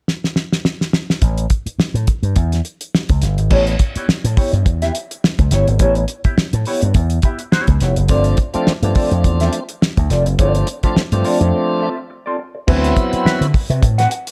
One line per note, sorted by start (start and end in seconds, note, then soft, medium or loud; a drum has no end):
0.08 snare medium
0.24 snare medium
0.36 snare medium
0.52 snare medium
0.65 snare medium
0.81 snare medium
0.93 snare loud
1.10 snare medium
1.22 1.45 A1 medium
1.22 kick medium
1.22 closed hi-hat medium
1.38 closed hi-hat soft
1.50 kick medium
1.50 closed hi-hat medium
1.66 muted slap bass stroke soft
1.66 closed hi-hat soft
1.78 muted slap bass stroke soft
1.78 snare loud
1.94 2.05 A2 medium
1.94 closed hi-hat soft
2.07 kick loud
2.07 closed hi-hat medium
2.23 2.34 G2 medium
2.23 closed hi-hat soft
2.36 2.60 E2 loud
2.36 kick medium
2.36 closed hi-hat medium
2.52 snare soft
2.52 closed hi-hat soft
2.65 closed hi-hat medium
2.81 closed hi-hat medium
2.95 snare loud
3.09 3.20 C#2 medium
3.09 kick medium
3.09 closed hi-hat soft
3.22 3.39 G1 medium
3.22 snare soft
3.22 closed hi-hat medium
3.38 3.49 G#1 medium
3.38 closed hi-hat soft
3.50 3.75 A1 loud
3.50 3.72 B3 medium
3.50 3.67 E4 medium
3.50 3.67 G4 medium
3.50 3.67 C#5 medium
3.50 kick loud
3.50 crash medium
3.67 muted clean electric guitar stroke soft
3.67 closed hi-hat soft
3.79 muted clean electric guitar stroke soft
3.79 kick medium
3.79 closed hi-hat medium
3.96 4.08 B3 medium
3.96 4.08 E4 medium
3.96 4.08 G4 medium
3.96 4.09 C#5 medium
3.96 muted slap bass stroke soft
3.96 closed hi-hat soft
4.08 muted slap bass stroke soft
4.08 muted clean electric guitar stroke soft
4.08 snare loud
4.24 4.35 A2 medium
4.24 muted clean electric guitar stroke soft
4.24 closed hi-hat medium
4.37 4.58 B3 medium
4.37 4.54 E4 medium
4.37 4.53 G4 medium
4.37 4.53 C#5 medium
4.37 kick loud
4.37 open hi-hat medium
4.53 4.66 G2 medium
4.53 muted clean electric guitar stroke soft
4.53 closed hi-hat soft
4.66 4.89 E2 loud
4.66 muted clean electric guitar stroke soft
4.66 kick loud
4.66 closed hi-hat medium
4.82 4.93 B3 medium
4.82 4.94 E4 medium
4.82 4.94 G4 medium
4.82 4.95 E5 medium
4.82 snare soft
4.82 closed hi-hat medium
4.95 muted clean electric guitar stroke soft
4.95 closed hi-hat medium
5.11 muted clean electric guitar stroke medium
5.11 closed hi-hat medium
5.24 muted clean electric guitar stroke soft
5.24 snare loud
5.39 5.49 C#2 medium
5.39 muted clean electric guitar stroke soft
5.39 kick medium
5.39 closed hi-hat soft
5.51 5.64 G1 medium
5.51 5.73 B3 medium
5.51 5.69 E4 medium
5.51 5.68 G4 medium
5.51 5.68 C#5 medium
5.51 snare soft
5.51 closed hi-hat medium
5.68 5.78 G#1 medium
5.68 muted clean electric guitar stroke soft
5.68 closed hi-hat soft
5.79 6.04 A1 loud
5.79 6.02 B3 medium
5.79 5.97 E4 medium
5.79 5.96 G4 medium
5.79 5.96 C#5 loud
5.79 kick loud
5.79 closed hi-hat medium
5.95 muted clean electric guitar stroke soft
5.95 closed hi-hat soft
6.08 muted clean electric guitar stroke soft
6.08 closed hi-hat medium
6.24 6.37 B3 medium
6.24 6.37 E4 medium
6.24 6.37 G4 medium
6.24 6.38 E5 medium
6.24 muted slap bass stroke soft
6.24 kick medium
6.24 closed hi-hat soft
6.37 muted slap bass stroke soft
6.37 muted clean electric guitar stroke soft
6.37 snare loud
6.53 6.64 A2 medium
6.53 muted clean electric guitar stroke medium
6.53 closed hi-hat medium
6.65 6.87 B3 medium
6.65 6.83 E4 medium
6.65 6.83 G4 medium
6.65 6.82 C#5 medium
6.65 open hi-hat medium
6.82 6.93 G2 medium
6.82 muted clean electric guitar stroke soft
6.82 closed hi-hat soft
6.94 7.18 E2 loud
6.94 muted clean electric guitar stroke soft
6.94 kick medium
6.94 closed hi-hat medium
7.10 closed hi-hat medium
7.22 7.41 B3 medium
7.22 7.40 E4 medium
7.22 7.39 G4 medium
7.22 7.39 E5 medium
7.22 kick medium
7.22 closed hi-hat medium
7.39 muted clean electric guitar stroke medium
7.39 closed hi-hat soft
7.52 7.73 B3 medium
7.52 7.68 E4 medium
7.52 7.67 G4 loud
7.52 7.67 C#5 medium
7.52 snare loud
7.67 7.79 C#2 medium
7.67 muted clean electric guitar stroke soft
7.67 kick medium
7.67 closed hi-hat soft
7.80 7.94 F1 medium
7.80 7.98 B3 medium
7.80 7.97 E4 medium
7.80 7.96 G4 medium
7.80 7.96 C#5 medium
7.80 snare soft
7.80 closed hi-hat medium
7.96 8.09 F#1 medium
7.96 muted clean electric guitar stroke soft
7.96 closed hi-hat soft
8.08 8.33 G1 loud
8.08 8.39 F3 medium
8.08 8.39 A3 medium
8.08 8.31 C4 medium
8.08 8.39 C4 medium
8.08 8.39 D4 loud
8.08 8.26 F4 medium
8.08 8.25 A4 medium
8.08 8.25 D5 medium
8.08 kick loud
8.08 closed hi-hat medium
8.24 muted clean electric guitar stroke medium
8.24 closed hi-hat soft
8.37 muted clean electric guitar stroke soft
8.37 kick medium
8.37 closed hi-hat medium
8.54 8.72 F3 medium
8.54 8.73 A3 medium
8.54 8.73 C4 medium
8.54 8.66 C4 medium
8.54 8.73 D4 medium
8.54 8.67 F4 medium
8.54 8.66 A4 medium
8.54 8.67 D5 medium
8.54 muted slap bass stroke soft
8.54 closed hi-hat soft
8.67 muted slap bass stroke medium
8.67 snare loud
8.82 8.93 G2 medium
8.82 9.60 F3 medium
8.82 9.60 A3 medium
8.82 8.89 B3 medium
8.82 9.60 D4 medium
8.82 muted clean electric guitar stroke soft
8.82 closed hi-hat medium
8.90 9.63 C4 medium
8.95 9.16 C4 medium
8.95 9.11 F4 medium
8.95 9.11 A4 medium
8.95 9.11 D5 medium
8.95 kick loud
8.95 open hi-hat medium
9.11 9.24 F2 medium
9.11 muted clean electric guitar stroke soft
9.11 closed hi-hat soft
9.24 9.48 E2 loud
9.24 muted clean electric guitar stroke soft
9.24 kick medium
9.24 closed hi-hat medium
9.40 9.52 C4 medium
9.40 9.53 F4 medium
9.40 9.53 A4 medium
9.40 9.54 E5 medium
9.40 snare soft
9.40 closed hi-hat medium
9.53 muted clean electric guitar stroke soft
9.53 closed hi-hat medium
9.69 muted clean electric guitar stroke soft
9.69 closed hi-hat soft
9.81 muted clean electric guitar stroke soft
9.81 snare loud
9.97 10.08 D2 medium
9.97 muted clean electric guitar stroke soft
9.97 kick medium
9.97 closed hi-hat soft
10.10 10.26 F1 medium
10.10 10.31 C4 medium
10.10 10.25 F4 medium
10.10 10.25 A4 medium
10.10 10.25 D5 medium
10.10 snare soft
10.10 closed hi-hat medium
10.26 10.36 F#1 medium
10.26 muted clean electric guitar stroke soft
10.26 closed hi-hat soft
10.38 10.62 G1 loud
10.38 10.68 F3 medium
10.38 10.68 A3 medium
10.38 10.60 C4 medium
10.38 10.68 C4 medium
10.38 10.69 D4 medium
10.38 10.54 F4 medium
10.38 10.54 A4 loud
10.38 10.54 D5 loud
10.38 kick loud
10.38 closed hi-hat medium
10.55 muted clean electric guitar stroke soft
10.55 closed hi-hat soft
10.67 muted clean electric guitar stroke soft
10.67 closed hi-hat medium
10.83 11.02 F3 medium
10.83 11.02 A3 medium
10.83 10.95 C4 soft
10.83 11.02 C4 medium
10.83 11.03 D4 medium
10.83 10.95 F4 medium
10.83 10.96 A4 medium
10.83 10.97 E5 medium
10.83 muted slap bass stroke medium
10.83 kick medium
10.83 closed hi-hat soft
10.96 muted clean electric guitar stroke soft
10.96 muted slap bass stroke medium
10.96 snare loud
11.12 11.22 G2 medium
11.12 11.89 F3 medium
11.12 11.89 A3 medium
11.12 11.89 C4 medium
11.12 11.89 D4 medium
11.12 muted clean electric guitar stroke soft
11.12 closed hi-hat medium
11.24 11.45 C4 medium
11.24 11.40 F4 medium
11.24 11.39 A4 medium
11.24 11.39 D5 medium
11.24 open hi-hat medium
11.40 11.51 F2 medium
11.40 muted clean electric guitar stroke soft
11.40 closed hi-hat soft
11.54 muted clean electric guitar stroke soft
11.81 11.99 C4 medium
11.81 11.97 F4 medium
11.81 11.97 A4 medium
11.81 11.97 E5 medium
11.97 muted clean electric guitar stroke soft
12.10 muted clean electric guitar stroke soft
12.26 12.37 C4 medium
12.26 12.38 F4 medium
12.26 12.38 A4 medium
12.26 12.38 D5 medium
12.38 muted clean electric guitar stroke soft
12.55 muted clean electric guitar stroke soft
12.67 12.91 D2 loud
12.67 13.46 F#3 medium
12.67 13.47 B3 medium
12.67 12.94 C4 medium
12.67 13.47 C4 medium
12.67 13.47 E4 loud
12.67 12.94 F#4 loud
12.67 12.94 B4 loud
12.67 12.95 E5 loud
12.67 kick loud
12.67 crash medium
12.84 closed hi-hat soft
12.96 kick loud
12.96 closed hi-hat medium
13.13 muted clean electric guitar stroke medium
13.13 muted slap bass stroke medium
13.13 closed hi-hat soft
13.25 13.46 C4 medium
13.25 13.46 F#4 medium
13.25 13.46 B4 medium
13.25 13.46 E5 medium
13.25 muted slap bass stroke soft
13.25 snare loud
13.41 13.51 D3 medium
13.41 closed hi-hat medium
13.54 muted clean electric guitar stroke soft
13.54 kick loud
13.54 open hi-hat medium
13.70 13.80 C3 medium
13.70 13.82 C4 medium
13.70 13.82 F#4 medium
13.70 13.82 B4 medium
13.70 13.82 E5 medium
13.70 closed hi-hat soft
13.82 14.06 A2 medium
13.82 muted clean electric guitar stroke soft
13.82 kick medium
13.82 closed hi-hat medium
13.98 14.10 C4 medium
13.98 14.11 F#4 medium
13.98 14.11 B4 medium
13.98 14.11 F#5 loud
13.98 snare soft
13.98 closed hi-hat medium
14.11 muted clean electric guitar stroke soft
14.11 closed hi-hat medium
14.27 muted clean electric guitar stroke soft
14.27 closed hi-hat medium